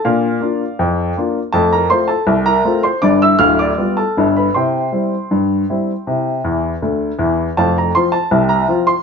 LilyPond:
<<
  \new Staff \with { instrumentName = "Upright piano" } { \time 2/4 \key f \major \tempo 4 = 80 <f' d'' f''>4. r8 | <a' a''>16 <bes' bes''>16 <c'' c'''>16 <a' a''>8 <bes' bes''>8 <c'' c'''>16 | <d'' d'''>16 <e'' e'''>16 <f'' f'''>16 <d'' d'''>8 <a' a''>8 <b' b''>16 | <c'' g'' c'''>2~ |
<c'' g'' c'''>4 r4 | <c'' f'' a''>16 bes''16 c'''16 a''8 bes''8 c'''16 | }
  \new Staff \with { instrumentName = "Upright piano" } { \clef bass \time 2/4 \key f \major <bes, d'>8 <bes d' f'>8 f,8 <bes d' f'>8 | <f, a>8 <a c' f'>8 c,8 <a c' f'>8 | <g,, g,>8 <d,, d,>8 <g b f'>8 <g,, g,>8 | <c e'>8 <g c' e'>8 g,8 <g c' e'>8 |
<c e'>8 <e, e>8 <d, d>8 <e, e>8 | <f,, f,>8 <f c' f'>8 <c, c>8 <f c' f'>8 | }
>>